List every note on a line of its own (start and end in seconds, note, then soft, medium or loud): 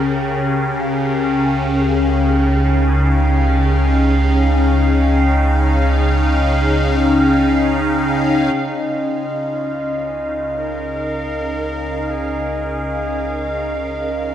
0.00 0.40 C#2 medium
0.00 14.35 C#3 medium
0.00 14.35 C#4 medium
0.00 3.68 G4 medium
0.00 3.67 A#4 medium
0.00 14.35 F5 medium
0.00 8.58 G5 medium
0.45 8.50 C#2 medium
1.54 14.35 D#4 medium
8.54 14.35 C#2 medium
8.54 10.59 F4 medium
8.54 14.35 D#5 medium
8.91 14.35 A#4 medium
10.57 12.12 A#4 loud
12.10 14.11 G#4 medium